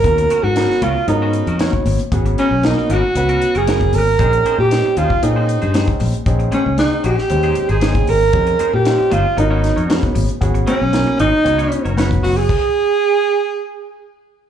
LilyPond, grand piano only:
\new Staff \with { instrumentName = "Grand piano" } { \time 4/4 \key gis \dorian \tempo 4 = 116 <b cis' fis' ais'>8 r8 <b cis' fis' ais'>8 r8 <b cis' fis' ais'>8 r8 <b cis' fis' cis''>8 r8 | <b cis' fis' gis'>8 r8 <b cis' fis' ais'>8 r8 <b cis' fis' b'>8 r8 <b cis' fis' ais'>8 r8 | <bis cis' dis' gis'>8 r8 <bis cis' dis' g'>8 r8 <bis cis' dis' gis'>8 r8 <bis cis' dis' gis'>8 r8 | <bis cis' dis' gis'>8 r8 <bis cis' dis' gis'>8 r8 <gis bis cis' dis'>8 r8 <bis cis' dis' gis'>8 r8 |
<bis cis' dis' gis'>8 r8 <bis cis' dis' eis'>8 r8 <b cis' fis' ais'>8 r8 <b cis' fis' gis'>8 r8 | <b cis' fis' gis'>8 r8 <b cis' fis' ais'>8 r8 <b cis' fis' cis''>8 r8 <b cis' fis' b'>8 r8 | r1 | }